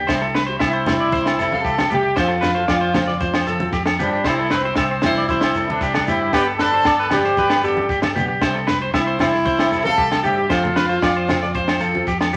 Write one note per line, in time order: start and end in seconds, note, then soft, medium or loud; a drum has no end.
0.07 0.57 C2 medium
0.07 0.24 G3 medium
0.07 0.24 C4 medium
0.07 0.25 E4 medium
0.07 0.25 G4 medium
0.07 0.20 C5 medium
0.07 kick medium
0.07 snare medium
0.07 low agogo medium
0.07 shekere medium
0.22 0.34 A4 medium
0.34 0.46 B4 medium
0.34 snare medium
0.46 0.65 E4 soft
0.46 0.64 G4 soft
0.46 0.59 C5 medium
0.51 0.65 C4 soft
0.59 1.61 C2 medium
0.59 0.73 E5 medium
0.59 kick medium
0.59 snare medium
0.59 low agogo medium
0.59 shekere medium
0.64 0.87 E4 medium
0.64 0.87 C5 medium
0.73 0.98 C5 medium
0.86 1.03 G3 medium
0.86 1.03 C4 medium
0.86 1.49 E4 loud
0.86 1.04 E4 medium
0.86 1.04 G4 medium
0.86 1.49 C5 medium
0.86 snare medium
0.86 high conga medium
0.86 low conga medium
0.86 low agogo medium
0.86 shekere loud
1.00 1.12 D5 medium
1.12 1.38 C5 medium
1.12 kick medium
1.12 high conga medium
1.12 shekere medium
1.26 snare medium
1.26 low agogo medium
1.39 1.53 G3 medium
1.39 1.53 C4 medium
1.39 1.53 E4 medium
1.39 1.51 G4 medium
1.39 1.64 A4 medium
1.39 shekere loud
1.52 1.69 C4 soft
1.52 1.69 E4 soft
1.52 1.68 G4 medium
1.52 1.92 A4 loud
1.52 1.91 F5 medium
1.52 high conga medium
1.64 1.88 C2 medium
1.64 1.77 G4 medium
1.64 kick medium
1.64 shekere medium
1.78 1.90 A4 medium
1.78 snare medium
1.78 high conga medium
1.78 low agogo medium
1.90 2.14 C2 medium
1.90 2.06 G3 medium
1.90 2.08 E4 medium
1.90 2.01 G4 medium
1.90 2.16 G4 loud
1.90 2.08 G4 medium
1.90 2.20 E5 medium
1.90 low conga medium
1.90 shekere loud
2.03 2.16 G4 medium
2.16 2.65 F2 medium
2.16 2.33 F3 medium
2.16 2.33 C4 medium
2.16 2.33 F4 medium
2.16 3.74 F4 medium
2.16 2.34 A4 medium
2.16 2.29 C5 medium
2.16 3.75 C5 medium
2.16 kick medium
2.16 snare medium
2.16 low agogo medium
2.16 shekere medium
2.28 2.42 A4 medium
2.41 2.54 B4 medium
2.41 snare medium
2.41 high conga medium
2.41 shekere medium
2.55 2.73 F4 soft
2.55 2.72 A4 medium
2.55 2.68 C5 medium
2.55 shekere soft
2.60 2.74 C4 soft
2.68 3.69 F2 loud
2.68 2.81 D5 medium
2.68 kick medium
2.68 snare medium
2.68 low agogo medium
2.68 shekere medium
2.81 3.07 C5 medium
2.93 3.10 F3 medium
2.93 3.11 C4 medium
2.93 3.11 F4 medium
2.93 3.12 A4 medium
2.93 snare medium
2.93 high conga medium
2.93 low conga medium
2.93 low agogo medium
2.93 shekere medium
3.08 3.20 D5 medium
3.08 snare soft
3.21 3.46 C5 medium
3.21 kick medium
3.21 high conga medium
3.21 shekere medium
3.34 snare medium
3.34 low agogo medium
3.46 3.61 F3 medium
3.46 3.61 C4 medium
3.46 3.72 A4 medium
3.46 3.60 A4 medium
3.46 muted steel-string acoustic guitar stroke medium
3.46 shekere loud
3.60 3.77 C4 soft
3.60 3.77 F4 medium
3.60 3.76 A4 medium
3.60 high conga medium
3.60 shekere soft
3.72 3.96 F2 medium
3.72 3.86 G4 medium
3.72 kick medium
3.72 snare soft
3.72 shekere medium
3.86 3.99 A4 medium
3.86 snare medium
3.86 low agogo medium
3.99 4.23 G2 medium
3.99 4.16 F3 medium
3.99 4.16 C4 medium
3.99 4.24 D4 medium
3.99 4.17 F4 medium
3.99 4.12 G4 medium
3.99 4.26 B4 medium
3.99 muted steel-string acoustic guitar stroke medium
3.99 low conga medium
3.99 shekere loud
4.13 4.25 G4 medium
4.13 shekere soft
4.24 4.73 C2 medium
4.24 4.41 G3 medium
4.24 4.42 C4 medium
4.24 4.52 E4 medium
4.24 4.42 E4 medium
4.24 4.43 G4 medium
4.24 4.38 C5 medium
4.24 4.52 C5 medium
4.24 kick medium
4.24 snare medium
4.24 low agogo medium
4.24 shekere medium
4.39 4.51 A4 medium
4.50 5.05 C4 medium
4.50 5.06 G4 medium
4.50 4.64 B4 medium
4.50 snare medium
4.50 shekere loud
4.64 4.82 C4 soft
4.64 4.81 E4 soft
4.64 4.80 G4 soft
4.64 4.77 C5 medium
4.75 5.77 C2 medium
4.75 4.90 E5 medium
4.75 kick medium
4.75 snare medium
4.75 low agogo medium
4.75 shekere medium
4.91 5.16 C5 medium
5.02 5.20 G3 medium
5.02 5.20 C4 medium
5.02 5.27 E4 loud
5.02 5.21 E4 medium
5.02 snare medium
5.02 high conga medium
5.02 low conga medium
5.02 low agogo medium
5.02 shekere medium
5.06 5.21 G4 medium
5.06 5.30 C5 medium
5.15 5.30 D5 medium
5.15 snare soft
5.28 5.65 E4 loud
5.28 5.55 C5 medium
5.28 5.67 C5 medium
5.28 kick medium
5.28 high conga medium
5.28 shekere medium
5.41 snare medium
5.41 low agogo medium
5.54 5.69 G3 medium
5.54 5.68 C4 medium
5.54 5.67 E4 medium
5.54 5.70 G4 medium
5.54 5.81 A4 medium
5.54 shekere loud
5.68 5.85 C4 soft
5.68 6.08 D4 medium
5.68 5.84 E4 soft
5.68 6.11 B4 medium
5.68 high conga medium
5.81 6.05 C2 medium
5.81 5.95 G4 medium
5.81 kick medium
5.81 snare soft
5.81 shekere medium
5.94 6.08 A4 medium
5.94 snare medium
5.94 high conga medium
5.94 low agogo medium
6.07 6.31 G2 medium
6.07 6.24 G3 medium
6.07 6.24 C4 medium
6.07 6.33 E4 medium
6.07 6.24 E4 medium
6.07 6.21 G4 medium
6.07 6.25 G4 medium
6.07 low conga medium
6.07 shekere loud
6.11 6.36 C5 medium
6.22 6.34 G4 medium
6.33 6.82 G1 loud
6.33 6.50 B3 medium
6.33 6.45 G4 loud
6.33 6.50 G4 medium
6.33 6.47 B4 medium
6.33 6.43 D5 medium
6.33 muted steel-string acoustic guitar stroke medium
6.33 kick medium
6.33 snare medium
6.33 low agogo medium
6.33 shekere medium
6.47 6.59 A4 medium
6.58 7.08 A4 loud
6.58 6.73 B4 medium
6.58 7.10 D5 loud
6.58 snare medium
6.58 shekere loud
6.72 6.90 D4 soft
6.72 6.88 G4 medium
6.72 6.86 C5 medium
6.85 7.86 G1 loud
6.85 6.99 D5 medium
6.85 kick medium
6.85 snare medium
6.85 low agogo medium
6.85 shekere medium
6.99 7.24 B4 medium
7.10 7.27 B3 medium
7.10 7.28 D4 medium
7.10 7.62 G4 loud
7.10 7.29 G4 medium
7.10 7.63 D5 medium
7.10 snare medium
7.10 high conga medium
7.10 low conga medium
7.10 low agogo medium
7.10 shekere loud
7.24 7.37 C5 medium
7.24 snare soft
7.37 7.63 B4 medium
7.37 kick medium
7.37 high conga medium
7.37 shekere medium
7.50 snare medium
7.50 low agogo medium
7.62 7.77 B3 medium
7.62 7.77 D4 medium
7.62 8.12 G4 medium
7.62 7.74 G4 medium
7.62 7.89 A4 medium
7.62 8.13 D5 medium
7.62 shekere medium
7.75 7.93 D4 soft
7.75 7.92 G4 soft
7.75 high conga medium
7.89 8.13 G1 medium
7.89 8.03 G4 medium
7.89 kick medium
7.89 shekere medium
8.02 8.15 A4 medium
8.02 snare medium
8.02 high conga medium
8.02 low agogo medium
8.15 8.40 B1 medium
8.15 8.31 B3 medium
8.15 8.32 D4 medium
8.15 8.27 G4 medium
8.15 8.32 G4 medium
8.15 low conga medium
8.15 shekere loud
8.28 8.41 G4 medium
8.41 8.90 C2 medium
8.41 8.58 G3 medium
8.41 8.58 C4 medium
8.41 8.58 E4 medium
8.41 8.58 G4 medium
8.41 8.55 C5 medium
8.41 kick medium
8.41 snare medium
8.41 low agogo medium
8.41 shekere medium
8.55 8.67 A4 medium
8.67 8.80 B4 medium
8.67 snare medium
8.67 shekere medium
8.80 8.98 C4 soft
8.80 8.97 E4 medium
8.80 8.96 G4 medium
8.80 8.94 C5 medium
8.94 9.94 C2 loud
8.94 9.18 E4 medium
8.94 9.20 C5 medium
8.94 9.07 E5 medium
8.94 kick medium
8.94 snare medium
8.94 low agogo medium
8.94 shekere medium
9.07 9.32 C5 medium
9.19 9.35 G3 medium
9.19 9.36 C4 medium
9.19 9.81 E4 loud
9.19 9.36 E4 medium
9.19 9.37 G4 medium
9.19 9.82 C5 medium
9.19 snare medium
9.19 high conga medium
9.19 low conga medium
9.19 low agogo medium
9.19 shekere medium
9.34 snare soft
9.45 9.71 C5 medium
9.45 kick medium
9.45 high conga medium
9.45 shekere medium
9.59 snare medium
9.59 low agogo medium
9.72 9.85 G3 medium
9.72 9.86 C4 medium
9.72 9.85 E4 medium
9.72 9.84 G4 medium
9.72 9.97 A4 medium
9.72 shekere medium
9.84 10.02 C4 soft
9.84 10.01 E4 soft
9.84 10.01 G4 medium
9.84 10.21 A4 loud
9.84 10.23 F5 medium
9.84 high conga medium
9.98 10.22 C2 medium
9.98 10.10 G4 medium
9.98 kick loud
9.98 shekere medium
10.11 10.23 A4 medium
10.11 snare medium
10.11 high conga medium
10.11 low agogo medium
10.23 10.48 G2 medium
10.23 10.40 G3 medium
10.23 10.40 C4 medium
10.23 10.41 E4 medium
10.23 10.48 G4 loud
10.23 10.37 G4 medium
10.23 10.41 G4 medium
10.23 10.49 E5 medium
10.23 low conga medium
10.23 shekere medium
10.38 10.50 G4 medium
10.49 10.98 F2 loud
10.49 10.66 F3 medium
10.49 10.66 C4 medium
10.49 12.02 F4 loud
10.49 10.66 F4 medium
10.49 10.67 A4 medium
10.49 10.63 C5 medium
10.49 12.04 C5 medium
10.49 kick medium
10.49 snare medium
10.49 low agogo medium
10.49 shekere medium
10.64 10.76 A4 medium
10.64 low conga medium
10.76 10.89 B4 medium
10.76 snare medium
10.76 high conga medium
10.76 shekere medium
10.89 11.06 C4 soft
10.89 11.06 F4 soft
10.89 11.05 A4 soft
10.89 11.02 C5 medium
10.89 shekere soft
11.02 12.03 F2 medium
11.02 11.15 D5 medium
11.02 kick medium
11.02 snare medium
11.02 low agogo medium
11.02 shekere medium
11.17 11.41 C5 medium
11.26 11.43 F3 medium
11.26 11.44 C4 medium
11.26 11.44 F4 medium
11.26 11.45 A4 medium
11.26 snare medium
11.26 high conga medium
11.26 low conga medium
11.26 low agogo medium
11.26 shekere medium
11.41 11.55 D5 medium
11.41 snare soft
11.41 shekere soft
11.54 11.80 C5 medium
11.54 kick medium
11.54 high conga medium
11.54 shekere medium
11.68 snare medium
11.68 low agogo medium
11.79 11.93 F3 medium
11.79 11.93 C4 medium
11.79 11.93 F4 medium
11.79 12.06 A4 medium
11.79 11.91 A4 medium
11.79 shekere medium
11.92 12.10 C4 soft
11.92 12.10 F4 medium
11.92 12.09 A4 medium
11.92 high conga medium
12.06 12.30 F2 medium
12.06 12.20 G4 medium
12.06 kick medium
12.06 shekere medium
12.21 12.33 A4 medium
12.21 snare medium
12.21 low agogo medium
12.33 12.37 C2 medium
12.33 12.37 F3 medium
12.33 12.37 C4 medium
12.33 12.37 G4 medium
12.33 shekere medium